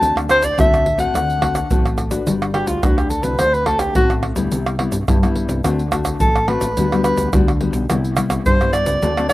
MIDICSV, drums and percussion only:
0, 0, Header, 1, 4, 480
1, 0, Start_track
1, 0, Key_signature, 1, "major"
1, 0, Tempo, 562852
1, 13, Time_signature, 4, 2, 24, 8
1, 7957, End_track
2, 0, Start_track
2, 0, Title_t, "Pandeiro"
2, 21, Note_on_c, 9, 54, 66
2, 107, Note_off_c, 9, 54, 0
2, 145, Note_on_c, 9, 54, 33
2, 231, Note_off_c, 9, 54, 0
2, 251, Note_on_c, 9, 54, 55
2, 337, Note_off_c, 9, 54, 0
2, 362, Note_on_c, 9, 54, 66
2, 447, Note_off_c, 9, 54, 0
2, 500, Note_on_c, 9, 54, 83
2, 585, Note_off_c, 9, 54, 0
2, 629, Note_on_c, 9, 54, 33
2, 714, Note_off_c, 9, 54, 0
2, 734, Note_on_c, 9, 54, 56
2, 819, Note_off_c, 9, 54, 0
2, 842, Note_on_c, 9, 54, 59
2, 927, Note_off_c, 9, 54, 0
2, 983, Note_on_c, 9, 54, 71
2, 1068, Note_off_c, 9, 54, 0
2, 1106, Note_on_c, 9, 54, 32
2, 1192, Note_off_c, 9, 54, 0
2, 1211, Note_on_c, 9, 54, 63
2, 1297, Note_off_c, 9, 54, 0
2, 1322, Note_on_c, 9, 54, 62
2, 1407, Note_off_c, 9, 54, 0
2, 1455, Note_on_c, 9, 54, 74
2, 1541, Note_off_c, 9, 54, 0
2, 1582, Note_on_c, 9, 54, 29
2, 1668, Note_off_c, 9, 54, 0
2, 1686, Note_on_c, 9, 54, 47
2, 1771, Note_off_c, 9, 54, 0
2, 1800, Note_on_c, 9, 54, 70
2, 1885, Note_off_c, 9, 54, 0
2, 1934, Note_on_c, 9, 54, 74
2, 2019, Note_off_c, 9, 54, 0
2, 2064, Note_on_c, 9, 54, 32
2, 2149, Note_off_c, 9, 54, 0
2, 2166, Note_on_c, 9, 54, 58
2, 2252, Note_off_c, 9, 54, 0
2, 2280, Note_on_c, 9, 54, 67
2, 2365, Note_off_c, 9, 54, 0
2, 2415, Note_on_c, 9, 54, 80
2, 2500, Note_off_c, 9, 54, 0
2, 2541, Note_on_c, 9, 54, 31
2, 2626, Note_off_c, 9, 54, 0
2, 2646, Note_on_c, 9, 54, 55
2, 2731, Note_off_c, 9, 54, 0
2, 2756, Note_on_c, 9, 54, 58
2, 2842, Note_off_c, 9, 54, 0
2, 2889, Note_on_c, 9, 54, 77
2, 2974, Note_off_c, 9, 54, 0
2, 3020, Note_on_c, 9, 54, 33
2, 3105, Note_off_c, 9, 54, 0
2, 3122, Note_on_c, 9, 54, 58
2, 3207, Note_off_c, 9, 54, 0
2, 3233, Note_on_c, 9, 54, 64
2, 3318, Note_off_c, 9, 54, 0
2, 3371, Note_on_c, 9, 54, 80
2, 3456, Note_off_c, 9, 54, 0
2, 3496, Note_on_c, 9, 54, 29
2, 3582, Note_off_c, 9, 54, 0
2, 3605, Note_on_c, 9, 54, 51
2, 3690, Note_off_c, 9, 54, 0
2, 3718, Note_on_c, 9, 54, 68
2, 3803, Note_off_c, 9, 54, 0
2, 3851, Note_on_c, 9, 54, 67
2, 3937, Note_off_c, 9, 54, 0
2, 3978, Note_on_c, 9, 54, 31
2, 4063, Note_off_c, 9, 54, 0
2, 4084, Note_on_c, 9, 54, 54
2, 4170, Note_off_c, 9, 54, 0
2, 4197, Note_on_c, 9, 54, 65
2, 4282, Note_off_c, 9, 54, 0
2, 4334, Note_on_c, 9, 54, 80
2, 4419, Note_off_c, 9, 54, 0
2, 4461, Note_on_c, 9, 54, 31
2, 4547, Note_off_c, 9, 54, 0
2, 4566, Note_on_c, 9, 54, 54
2, 4651, Note_off_c, 9, 54, 0
2, 4681, Note_on_c, 9, 54, 65
2, 4767, Note_off_c, 9, 54, 0
2, 4813, Note_on_c, 9, 54, 73
2, 4899, Note_off_c, 9, 54, 0
2, 4941, Note_on_c, 9, 54, 32
2, 5026, Note_off_c, 9, 54, 0
2, 5047, Note_on_c, 9, 54, 61
2, 5133, Note_off_c, 9, 54, 0
2, 5158, Note_on_c, 9, 54, 65
2, 5244, Note_off_c, 9, 54, 0
2, 5289, Note_on_c, 9, 54, 71
2, 5374, Note_off_c, 9, 54, 0
2, 5420, Note_on_c, 9, 54, 31
2, 5506, Note_off_c, 9, 54, 0
2, 5526, Note_on_c, 9, 54, 49
2, 5611, Note_off_c, 9, 54, 0
2, 5638, Note_on_c, 9, 54, 72
2, 5723, Note_off_c, 9, 54, 0
2, 5773, Note_on_c, 9, 54, 72
2, 5859, Note_off_c, 9, 54, 0
2, 5904, Note_on_c, 9, 54, 33
2, 5989, Note_off_c, 9, 54, 0
2, 6005, Note_on_c, 9, 54, 57
2, 6090, Note_off_c, 9, 54, 0
2, 6119, Note_on_c, 9, 54, 65
2, 6204, Note_off_c, 9, 54, 0
2, 6252, Note_on_c, 9, 54, 79
2, 6337, Note_off_c, 9, 54, 0
2, 6381, Note_on_c, 9, 54, 34
2, 6466, Note_off_c, 9, 54, 0
2, 6486, Note_on_c, 9, 54, 54
2, 6572, Note_off_c, 9, 54, 0
2, 6594, Note_on_c, 9, 54, 56
2, 6679, Note_off_c, 9, 54, 0
2, 6734, Note_on_c, 9, 54, 80
2, 6819, Note_off_c, 9, 54, 0
2, 6860, Note_on_c, 9, 54, 33
2, 6946, Note_off_c, 9, 54, 0
2, 6964, Note_on_c, 9, 54, 62
2, 7049, Note_off_c, 9, 54, 0
2, 7078, Note_on_c, 9, 54, 62
2, 7164, Note_off_c, 9, 54, 0
2, 7214, Note_on_c, 9, 54, 72
2, 7299, Note_off_c, 9, 54, 0
2, 7342, Note_on_c, 9, 54, 32
2, 7427, Note_off_c, 9, 54, 0
2, 7447, Note_on_c, 9, 54, 45
2, 7533, Note_off_c, 9, 54, 0
2, 7558, Note_on_c, 9, 54, 70
2, 7643, Note_off_c, 9, 54, 0
2, 7695, Note_on_c, 9, 54, 74
2, 7781, Note_off_c, 9, 54, 0
2, 7823, Note_on_c, 9, 54, 35
2, 7909, Note_off_c, 9, 54, 0
2, 7927, Note_on_c, 9, 54, 54
2, 7957, Note_off_c, 9, 54, 0
2, 7957, End_track
3, 0, Start_track
3, 0, Title_t, "Tamborim"
3, 145, Note_on_c, 9, 60, 82
3, 231, Note_off_c, 9, 60, 0
3, 251, Note_on_c, 9, 60, 74
3, 337, Note_off_c, 9, 60, 0
3, 500, Note_on_c, 9, 60, 80
3, 585, Note_off_c, 9, 60, 0
3, 629, Note_on_c, 9, 60, 78
3, 714, Note_off_c, 9, 60, 0
3, 983, Note_on_c, 9, 60, 72
3, 1068, Note_off_c, 9, 60, 0
3, 1211, Note_on_c, 9, 60, 92
3, 1297, Note_off_c, 9, 60, 0
3, 1322, Note_on_c, 9, 60, 66
3, 1407, Note_off_c, 9, 60, 0
3, 1582, Note_on_c, 9, 60, 76
3, 1668, Note_off_c, 9, 60, 0
3, 1686, Note_on_c, 9, 60, 63
3, 1771, Note_off_c, 9, 60, 0
3, 2064, Note_on_c, 9, 60, 76
3, 2149, Note_off_c, 9, 60, 0
3, 2166, Note_on_c, 9, 60, 69
3, 2252, Note_off_c, 9, 60, 0
3, 2415, Note_on_c, 9, 60, 87
3, 2500, Note_off_c, 9, 60, 0
3, 2541, Note_on_c, 9, 60, 77
3, 2626, Note_off_c, 9, 60, 0
3, 2889, Note_on_c, 9, 60, 74
3, 2974, Note_off_c, 9, 60, 0
3, 3122, Note_on_c, 9, 60, 84
3, 3207, Note_off_c, 9, 60, 0
3, 3233, Note_on_c, 9, 60, 70
3, 3318, Note_off_c, 9, 60, 0
3, 3496, Note_on_c, 9, 60, 77
3, 3582, Note_off_c, 9, 60, 0
3, 3605, Note_on_c, 9, 60, 71
3, 3690, Note_off_c, 9, 60, 0
3, 3978, Note_on_c, 9, 60, 81
3, 4063, Note_off_c, 9, 60, 0
3, 4084, Note_on_c, 9, 60, 76
3, 4170, Note_off_c, 9, 60, 0
3, 4334, Note_on_c, 9, 60, 80
3, 4419, Note_off_c, 9, 60, 0
3, 4461, Note_on_c, 9, 60, 76
3, 4547, Note_off_c, 9, 60, 0
3, 4813, Note_on_c, 9, 60, 74
3, 4899, Note_off_c, 9, 60, 0
3, 5047, Note_on_c, 9, 60, 90
3, 5133, Note_off_c, 9, 60, 0
3, 5158, Note_on_c, 9, 60, 74
3, 5244, Note_off_c, 9, 60, 0
3, 5420, Note_on_c, 9, 60, 74
3, 5506, Note_off_c, 9, 60, 0
3, 5526, Note_on_c, 9, 60, 66
3, 5611, Note_off_c, 9, 60, 0
3, 5904, Note_on_c, 9, 60, 74
3, 5989, Note_off_c, 9, 60, 0
3, 6005, Note_on_c, 9, 60, 73
3, 6090, Note_off_c, 9, 60, 0
3, 6252, Note_on_c, 9, 60, 78
3, 6337, Note_off_c, 9, 60, 0
3, 6381, Note_on_c, 9, 60, 70
3, 6466, Note_off_c, 9, 60, 0
3, 6734, Note_on_c, 9, 60, 78
3, 6819, Note_off_c, 9, 60, 0
3, 6964, Note_on_c, 9, 60, 92
3, 7049, Note_off_c, 9, 60, 0
3, 7078, Note_on_c, 9, 60, 82
3, 7164, Note_off_c, 9, 60, 0
3, 7342, Note_on_c, 9, 60, 74
3, 7427, Note_off_c, 9, 60, 0
3, 7447, Note_on_c, 9, 60, 77
3, 7533, Note_off_c, 9, 60, 0
3, 7823, Note_on_c, 9, 60, 79
3, 7909, Note_off_c, 9, 60, 0
3, 7927, Note_on_c, 9, 60, 71
3, 7957, Note_off_c, 9, 60, 0
3, 7957, End_track
4, 0, Start_track
4, 0, Title_t, "Drums"
4, 21, Note_on_c, 9, 82, 72
4, 21, Note_on_c, 9, 87, 48
4, 107, Note_off_c, 9, 82, 0
4, 107, Note_off_c, 9, 87, 0
4, 145, Note_on_c, 9, 82, 35
4, 231, Note_off_c, 9, 82, 0
4, 251, Note_on_c, 9, 82, 66
4, 337, Note_off_c, 9, 82, 0
4, 362, Note_on_c, 9, 82, 86
4, 362, Note_on_c, 9, 87, 31
4, 447, Note_off_c, 9, 82, 0
4, 447, Note_off_c, 9, 87, 0
4, 500, Note_on_c, 9, 82, 89
4, 500, Note_on_c, 9, 87, 106
4, 585, Note_off_c, 9, 82, 0
4, 585, Note_off_c, 9, 87, 0
4, 629, Note_on_c, 9, 82, 31
4, 714, Note_off_c, 9, 82, 0
4, 842, Note_on_c, 9, 82, 66
4, 927, Note_off_c, 9, 82, 0
4, 983, Note_on_c, 9, 82, 70
4, 983, Note_on_c, 9, 87, 53
4, 1068, Note_off_c, 9, 82, 0
4, 1068, Note_off_c, 9, 87, 0
4, 1106, Note_on_c, 9, 82, 29
4, 1192, Note_off_c, 9, 82, 0
4, 1211, Note_on_c, 9, 87, 36
4, 1297, Note_off_c, 9, 87, 0
4, 1322, Note_on_c, 9, 82, 79
4, 1322, Note_on_c, 9, 87, 29
4, 1407, Note_off_c, 9, 82, 0
4, 1407, Note_off_c, 9, 87, 0
4, 1455, Note_on_c, 9, 82, 82
4, 1455, Note_on_c, 9, 87, 94
4, 1541, Note_off_c, 9, 82, 0
4, 1541, Note_off_c, 9, 87, 0
4, 1582, Note_on_c, 9, 82, 30
4, 1668, Note_off_c, 9, 82, 0
4, 1686, Note_on_c, 9, 82, 52
4, 1686, Note_on_c, 9, 87, 25
4, 1771, Note_off_c, 9, 82, 0
4, 1771, Note_off_c, 9, 87, 0
4, 1800, Note_on_c, 9, 82, 83
4, 1800, Note_on_c, 9, 87, 33
4, 1885, Note_off_c, 9, 82, 0
4, 1885, Note_off_c, 9, 87, 0
4, 1934, Note_on_c, 9, 82, 69
4, 1934, Note_on_c, 9, 87, 46
4, 2019, Note_off_c, 9, 82, 0
4, 2019, Note_off_c, 9, 87, 0
4, 2064, Note_on_c, 9, 82, 32
4, 2149, Note_off_c, 9, 82, 0
4, 2280, Note_on_c, 9, 82, 76
4, 2280, Note_on_c, 9, 87, 32
4, 2365, Note_off_c, 9, 82, 0
4, 2365, Note_off_c, 9, 87, 0
4, 2415, Note_on_c, 9, 82, 84
4, 2415, Note_on_c, 9, 87, 102
4, 2500, Note_off_c, 9, 82, 0
4, 2500, Note_off_c, 9, 87, 0
4, 2541, Note_on_c, 9, 82, 35
4, 2626, Note_off_c, 9, 82, 0
4, 2646, Note_on_c, 9, 82, 60
4, 2731, Note_off_c, 9, 82, 0
4, 2756, Note_on_c, 9, 82, 64
4, 2842, Note_off_c, 9, 82, 0
4, 2889, Note_on_c, 9, 82, 67
4, 2889, Note_on_c, 9, 87, 57
4, 2974, Note_off_c, 9, 82, 0
4, 2974, Note_off_c, 9, 87, 0
4, 3020, Note_on_c, 9, 82, 30
4, 3105, Note_off_c, 9, 82, 0
4, 3122, Note_on_c, 9, 87, 34
4, 3207, Note_off_c, 9, 87, 0
4, 3233, Note_on_c, 9, 82, 67
4, 3233, Note_on_c, 9, 87, 30
4, 3318, Note_off_c, 9, 82, 0
4, 3318, Note_off_c, 9, 87, 0
4, 3371, Note_on_c, 9, 82, 74
4, 3371, Note_on_c, 9, 87, 101
4, 3456, Note_off_c, 9, 82, 0
4, 3456, Note_off_c, 9, 87, 0
4, 3496, Note_on_c, 9, 82, 33
4, 3582, Note_off_c, 9, 82, 0
4, 3718, Note_on_c, 9, 82, 78
4, 3718, Note_on_c, 9, 87, 33
4, 3803, Note_off_c, 9, 82, 0
4, 3803, Note_off_c, 9, 87, 0
4, 3851, Note_on_c, 9, 82, 76
4, 3851, Note_on_c, 9, 87, 49
4, 3937, Note_off_c, 9, 82, 0
4, 3937, Note_off_c, 9, 87, 0
4, 3978, Note_on_c, 9, 82, 30
4, 4063, Note_off_c, 9, 82, 0
4, 4197, Note_on_c, 9, 82, 74
4, 4197, Note_on_c, 9, 87, 31
4, 4282, Note_off_c, 9, 82, 0
4, 4282, Note_off_c, 9, 87, 0
4, 4334, Note_on_c, 9, 82, 83
4, 4334, Note_on_c, 9, 87, 109
4, 4419, Note_off_c, 9, 82, 0
4, 4419, Note_off_c, 9, 87, 0
4, 4461, Note_on_c, 9, 82, 34
4, 4547, Note_off_c, 9, 82, 0
4, 4681, Note_on_c, 9, 82, 65
4, 4767, Note_off_c, 9, 82, 0
4, 4813, Note_on_c, 9, 82, 80
4, 4813, Note_on_c, 9, 87, 57
4, 4899, Note_off_c, 9, 82, 0
4, 4899, Note_off_c, 9, 87, 0
4, 4941, Note_on_c, 9, 82, 29
4, 5026, Note_off_c, 9, 82, 0
4, 5047, Note_on_c, 9, 82, 72
4, 5047, Note_on_c, 9, 87, 35
4, 5133, Note_off_c, 9, 82, 0
4, 5133, Note_off_c, 9, 87, 0
4, 5158, Note_on_c, 9, 82, 77
4, 5158, Note_on_c, 9, 87, 31
4, 5244, Note_off_c, 9, 82, 0
4, 5244, Note_off_c, 9, 87, 0
4, 5289, Note_on_c, 9, 82, 79
4, 5289, Note_on_c, 9, 87, 92
4, 5374, Note_off_c, 9, 82, 0
4, 5374, Note_off_c, 9, 87, 0
4, 5420, Note_on_c, 9, 82, 30
4, 5506, Note_off_c, 9, 82, 0
4, 5526, Note_on_c, 9, 87, 28
4, 5611, Note_off_c, 9, 87, 0
4, 5638, Note_on_c, 9, 82, 84
4, 5638, Note_on_c, 9, 87, 35
4, 5723, Note_off_c, 9, 82, 0
4, 5723, Note_off_c, 9, 87, 0
4, 5773, Note_on_c, 9, 82, 74
4, 5773, Note_on_c, 9, 87, 52
4, 5859, Note_off_c, 9, 82, 0
4, 5859, Note_off_c, 9, 87, 0
4, 5904, Note_on_c, 9, 82, 34
4, 5989, Note_off_c, 9, 82, 0
4, 6005, Note_on_c, 9, 82, 66
4, 6090, Note_off_c, 9, 82, 0
4, 6119, Note_on_c, 9, 82, 77
4, 6119, Note_on_c, 9, 87, 35
4, 6204, Note_off_c, 9, 82, 0
4, 6204, Note_off_c, 9, 87, 0
4, 6252, Note_on_c, 9, 82, 84
4, 6252, Note_on_c, 9, 87, 110
4, 6337, Note_off_c, 9, 82, 0
4, 6337, Note_off_c, 9, 87, 0
4, 6381, Note_on_c, 9, 82, 35
4, 6466, Note_off_c, 9, 82, 0
4, 6594, Note_on_c, 9, 82, 69
4, 6679, Note_off_c, 9, 82, 0
4, 6734, Note_on_c, 9, 82, 78
4, 6734, Note_on_c, 9, 87, 55
4, 6819, Note_off_c, 9, 82, 0
4, 6819, Note_off_c, 9, 87, 0
4, 6860, Note_on_c, 9, 82, 30
4, 6946, Note_off_c, 9, 82, 0
4, 6964, Note_on_c, 9, 82, 79
4, 6964, Note_on_c, 9, 87, 33
4, 7049, Note_off_c, 9, 82, 0
4, 7049, Note_off_c, 9, 87, 0
4, 7078, Note_on_c, 9, 82, 75
4, 7078, Note_on_c, 9, 87, 30
4, 7164, Note_off_c, 9, 82, 0
4, 7164, Note_off_c, 9, 87, 0
4, 7214, Note_on_c, 9, 82, 77
4, 7214, Note_on_c, 9, 87, 98
4, 7299, Note_off_c, 9, 82, 0
4, 7299, Note_off_c, 9, 87, 0
4, 7342, Note_on_c, 9, 82, 34
4, 7427, Note_off_c, 9, 82, 0
4, 7447, Note_on_c, 9, 82, 58
4, 7533, Note_off_c, 9, 82, 0
4, 7558, Note_on_c, 9, 82, 84
4, 7558, Note_on_c, 9, 87, 35
4, 7643, Note_off_c, 9, 82, 0
4, 7643, Note_off_c, 9, 87, 0
4, 7695, Note_on_c, 9, 82, 72
4, 7695, Note_on_c, 9, 87, 51
4, 7781, Note_off_c, 9, 82, 0
4, 7781, Note_off_c, 9, 87, 0
4, 7823, Note_on_c, 9, 82, 33
4, 7909, Note_off_c, 9, 82, 0
4, 7927, Note_on_c, 9, 82, 66
4, 7957, Note_off_c, 9, 82, 0
4, 7957, End_track
0, 0, End_of_file